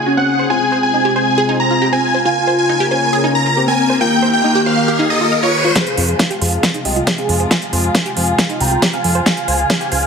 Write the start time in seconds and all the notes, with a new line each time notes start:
Already playing: C#3 A#3 F#4 G#4 G#5
0.06 C#4 F#4
0.17 C4 F#5
0.39 C5
0.50 C3 G#3 C4 F4 G#5
0.72 C5
0.83 G#5
0.94 C4 D#4
1.05 G4
1.16 C5 G#5
1.38 G#4
1.49 D#4
1.60 A#5
1.71 F4
1.82 G4
1.93 C4 G#5
2.14 C5
2.25 C#3 A#3 F4 A#4 G#5, riser
2.47 C5
2.59 G#5
2.69 D#4
2.80 G4
2.91 C#4 C5 G#5
3.13 G#4
3.24 D#4
3.35 A#5
3.46 F4
3.57 C4 G4
3.68 C4 G#5
3.90 C5
4.00 D#3 A#3 F4 G4 G5
4.22 C5
4.33 G5
4.44 A#3 D#4
4.55 G4
4.66 C5 F5
4.88 G4
4.99 D#4
5.10 D#5
5.21 F4
5.32 F5
5.43 F4 C#5
5.65 F4
5.76 C3 F3 G#3 F4 G#4, kick, snare, closed hi-hat
5.87 closed hi-hat
5.97 F2 C5, open hi-hat
6.08 G#4 F5, closed hi-hat
6.19 D#4, kick, snare, closed hi-hat
6.30 G4, closed hi-hat
6.41 F2 G#4 C5 F5, open hi-hat
6.52 closed hi-hat
6.63 G#4, kick, snare, closed hi-hat
6.74 D#4, closed hi-hat
6.85 C2 D#5 G5, open hi-hat
6.96 F4, closed hi-hat
7.07 G4, kick, snare, closed hi-hat
7.18 C4 G#4 F5, closed hi-hat
7.29 F2, open hi-hat
7.40 C5, closed hi-hat
7.51 F4 F5 G#5, kick, snare, closed hi-hat
7.62 closed hi-hat
7.73 F2 C5, open hi-hat
7.84 F5 G#5, closed hi-hat
7.95 D#4, kick, snare, closed hi-hat
8.06 G4, closed hi-hat
8.16 F2 C5 F5 G#5, open hi-hat
8.28 closed hi-hat
8.38 G#4, kick, snare, closed hi-hat
8.50 D#4, closed hi-hat
8.60 C2 G5 A#5, open hi-hat
8.71 F4, closed hi-hat
8.82 G4, kick, snare, closed hi-hat
8.93 C4 F5 G#5, closed hi-hat
9.04 F2, open hi-hat
9.15 C5, closed hi-hat
9.26 C#3 G#3 F4 F5, kick, snare, closed hi-hat
9.37 closed hi-hat
9.48 C#2 C5, open hi-hat
9.59 F5 G#5, closed hi-hat
9.70 D#4, kick, snare, closed hi-hat
9.81 G4, closed hi-hat
9.92 C#2 C5 F5 G#5, open hi-hat
10.03 closed hi-hat